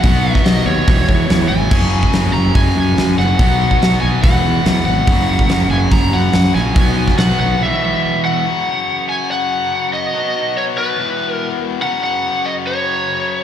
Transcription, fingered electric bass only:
\new Staff \with { instrumentName = "Fingered electric bass" } { \clef bass \time 4/4 \key e \lydian \tempo 4 = 143 b,,4 b,,8 dis,8 e,,8 e,8 e,8 gis,,8 | fis,,4 fis,,8 fis,,8 fis,,8 fis,8 fis,8 fis,,8 | b,,4 b,,8 b,,8 e,,8 e,8 e,8 gis,,8 | fis,,4 fis,,8 fis,,8 fis,,8 fis,8 fis,8 ais,,8 |
b,,4 b,,8 b,,8 r2 | r1 | r1 | r1 | }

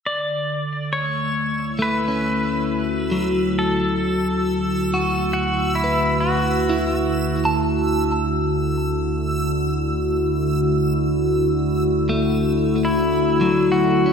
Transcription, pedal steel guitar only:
\new Staff \with { instrumentName = "Pedal steel guitar" } { \time 4/4 \key d \major \tempo 4 = 68 d''4 cis''4 b'2 | a'2 fis'8 e'8 fis'8. r16 | r1 | r2 r8 e'4 fis'8 | }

